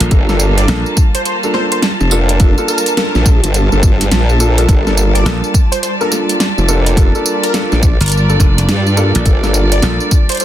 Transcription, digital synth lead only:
0.58 D5
1.15 C5
1.26 C5
1.54 C5
1.72 C5
2.68 A#4
2.97 A#4
5.15 D5
5.72 C5
5.83 C5
6.01 A#4
7.43 A#4
8.01 A#4
9.72 D5
10.30 C5
10.41 C5

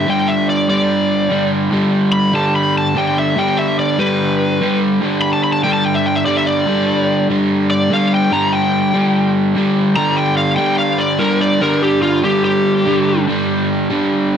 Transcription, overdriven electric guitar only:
0.07 G2 D3 G3
0.68 G2 D3 G3
1.30 G2 D3 G3
1.71 G2 D3 G3
2.33 G2 D3 G3
2.95 G2 D3 G3
3.35 G2 D3 G3
3.98 G2 D3 G3
4.61 G2 D3 G3
5.01 G2 D3 G3
5.64 G2 D3 G3
6.26 G2 D3 G3
6.66 G2 D3 G3
7.29 G2 D3 G3
7.90 G2 D3 G3
8.32 G2 D3 G3
8.94 G2 D3 G3
9.55 G2 D3 G3
9.96 G2 D3 G3
10.57 G2 D3 G3
11.20 G2 D3 G3
11.61 G2 D3 G3
12.23 G2 D3 G3
12.86 G2 D3 G3
13.28 G2 D3 G3
13.90 G2 D3 G3

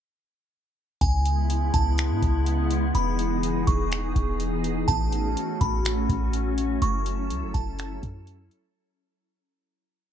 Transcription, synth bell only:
1.01 G#5
1.74 A5
2.95 B5
3.67 C#6
4.88 A5
5.61 B5
6.82 C#6
7.54 A5

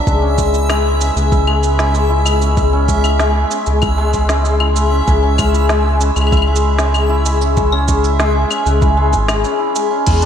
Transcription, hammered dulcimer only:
Already playing: F#3 B3 D4
0.07 G#3
0.22 C#4
0.38 G#3
0.53 E4
0.69 G#3
1.01 C#4
1.16 G#3
1.31 E4
1.47 G#3
1.78 C#4
1.94 G#3
2.10 E4
2.25 G#3
2.41 C#4
2.57 G#3
2.73 C#4
2.88 G#3
3.04 E4
3.19 G#3
3.51 C#4
3.66 G#3
3.82 E4
3.98 G#3
4.29 C#4
4.44 G#3
4.60 E4
4.76 G#3
4.91 C#4
5.07 G#3
5.23 C#4
5.38 G#3
5.54 E4
5.69 G#3
6.00 C#4
6.16 G#3
6.32 E4
6.47 G#3
6.78 C#4
6.94 G#3
7.09 E4
7.26 G#3
7.41 C#4
7.56 G#3
7.72 C#4
7.88 G#3
8.03 E4
8.19 G#3
8.50 C#4
8.65 G#3
8.81 E4
8.97 G#3
9.28 G#4
9.44 C#4
9.59 E4
9.75 G#3
9.91 C#4
10.06 G#3
10.22 D4

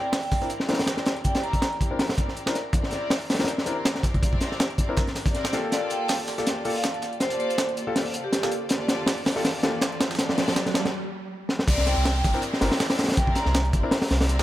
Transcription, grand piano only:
0.42 C4 D4 E4 A#4
0.69 C4 D4 E4 A#4
1.91 C4 D4 E4 A#4
2.47 C4 D4 E4 A#4
3.40 C4 D4 E4 A#4
3.67 C4 D4 E4 A#4
4.89 C4 D4 E4 A#4
5.53 A#3 F4 G4 A4
6.38 A#3 F4 G4 A4
6.65 A#3 F4 G4 A4
7.87 A#3 F4 G4 A4
8.43 A#3 F4 G4 A4
9.36 A#3 F4 G4 A4
9.63 A#3 F4 G4 A4
12.34 C4 D4 E4 A#4
12.61 C4 D4 E4 A#4
13.83 C4 D4 E4 A#4
14.39 C4 D4 E4 A#4

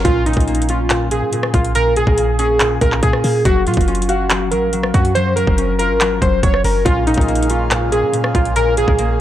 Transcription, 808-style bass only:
0.05 A#1
0.37 A#1
1.22 A#2
1.54 A#1
2.07 A#1
2.81 A#1
3.03 A#2
3.24 A#2
3.45 F#1
3.67 A#2
3.77 F#1
4.52 A#1
4.94 F#2
5.47 F#1
5.90 G#1
6.22 F#1
6.43 F#1
6.64 F#1
6.86 A#1
7.18 A#1
8.03 A#2
8.35 A#1
8.88 A#1

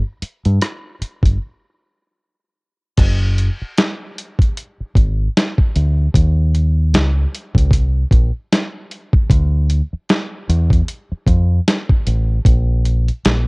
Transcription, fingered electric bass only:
0.22 muted fingered electric bass stroke
0.46 G2
1.01 muted fingered electric bass stroke
1.24 G1
2.99 F#1
3.62 muted fingered electric bass stroke
4.80 muted fingered electric bass stroke
4.96 G#1
5.76 D2
6.15 D#2
6.93 C#2
7.55 C#2
7.71 C2
8.12 A#1
9.30 D2
9.93 muted fingered electric bass stroke
10.49 E2
11.12 muted fingered electric bass stroke
11.27 F2
12.07 A1
12.46 A#1
13.26 A#1

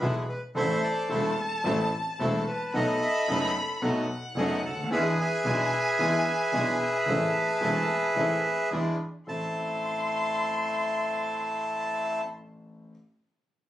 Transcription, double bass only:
0.00 B1
0.55 A1
1.10 E1
1.65 A1
2.20 E1
2.74 B1
3.28 F#1
3.82 B1
4.36 F#1
4.63 D2
4.90 E2
5.45 B1
5.99 E2
6.53 B1
7.07 A1
7.61 E1
8.15 A1
8.71 E2
9.27 A1

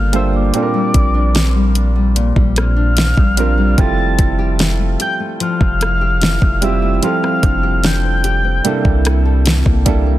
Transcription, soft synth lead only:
Already playing: F6
0.16 E6
0.36 D6
2.58 F6
3.80 A6
5.01 G6
5.42 F6
6.64 E6
7.05 F6
7.86 G6

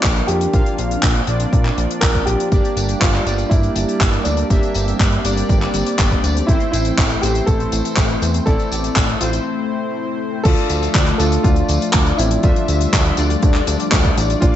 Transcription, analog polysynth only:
Already playing: A#3 D4 F4 D5
0.53 A#3 D4 F4 F5
1.28 A#3 D4 F4 D5
2.52 A#3 D4 G4 D5
3.26 A#3 D4 G4 D5
4.50 A#3 D4 G4 E5
5.25 A#3 D4 G4 D5
6.48 A3 C4 E4 C5
7.23 A3 C4 E4 C5
8.47 A3 C4 E4 D5
9.21 A3 C4 E4 C5
10.45 A3 D4 F4 D5
11.19 A3 D4 F4 D5
12.44 A3 D4 F4 E5
13.18 A3 D4 F4 D5
14.42 A#3 D4 F4 D5

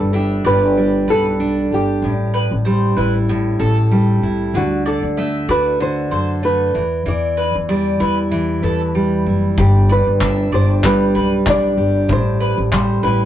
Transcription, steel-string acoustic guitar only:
Already playing: G3 D4 B4
0.14 D4
0.45 G4
0.77 G3
1.09 B4
1.40 D4
1.72 G4
2.04 A2
2.66 G3
2.97 E4
3.29 A2
3.60 A4
3.91 G3
4.23 E4
4.55 D3
5.18 A3
5.49 F#4
5.80 D3
6.11 A4
6.43 A3
6.75 E3
7.06 E3
7.69 G3
8.00 E4
8.31 E3
8.63 B4
8.95 G3
9.26 E4
9.59 G3
10.21 D4
10.53 G4
10.83 G3
11.15 B4
11.47 D4
11.78 G4
12.09 A2
12.72 G3
13.04 E4

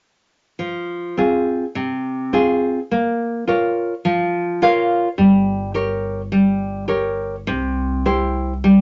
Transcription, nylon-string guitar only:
0.59 F3
1.17 C4 F4 G#4
1.75 C3
2.33 C4 F4 G#4
2.92 A#3
3.48 F4 A#4 C#5
4.05 F3
4.62 F4 A#4 C#5 F5
5.18 G3
5.74 G4 A#4 C#5
6.32 G3
6.88 G4 A#4 C#5
7.47 C3
8.05 E4 G4 C5
8.64 G3

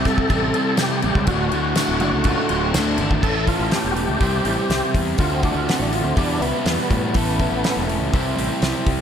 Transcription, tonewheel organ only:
0.05 A4
0.78 G4
1.04 G4
1.28 F#4
3.23 A4
3.48 F4
3.72 G4
3.91 F#4
3.96 G4
5.19 F4
5.32 C4
5.45 D4
5.58 F4
5.70 C4
5.82 D4
5.94 F4
6.04 C4
6.17 D4
6.42 B3

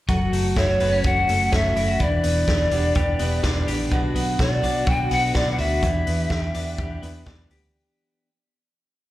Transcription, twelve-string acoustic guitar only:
0.09 F#3 A3 C#4 F#4
0.80 F#3 A3 C#4 F#4
1.04 F#3 A3 C#4 F#4
1.27 F#3 A3 C#4 F#4
1.51 F#3 A3 C#4 F#4
1.76 F#3 A3 C#4 F#4
2.01 E3 B3 D4 G4
2.72 E3 B3 D4 G4
2.96 E3 B3 D4 G4
3.19 E3 B3 D4 G4
3.43 E3 B3 D4 G4
3.68 E3 B3 D4 G4
3.91 B2 F#3 B3 D4 F#4
4.62 F#3 B3 D4 F#4
4.86 F#3 B3 D4 F#4
5.10 F#3 B3 D4 F#4
5.34 F#3 B3 D4 F#4
5.59 F#3 B3 D4 F#4
5.83 E3 B3 D4 G4
6.54 E3 B3 D4 G4
6.78 E3 B3 D4 G4
7.02 E3 B3 D4 G4
7.25 E3 B3 D4 G4
7.50 E3 B3 D4 G4

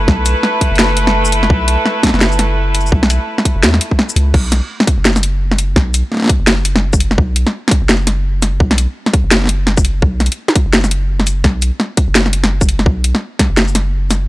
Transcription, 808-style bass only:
0.08 B1
0.72 F#1
1.50 B1
2.14 F#1
2.92 B1
3.56 F#1
3.63 E2
4.16 C#2
4.34 B1
4.98 F#1
5.76 B1
6.40 F#1
7.18 B1
7.82 F#1
8.60 B1
9.24 F#1
10.02 B1
10.66 F#1
11.44 B1
12.08 F#1
12.86 B1
13.50 F#1

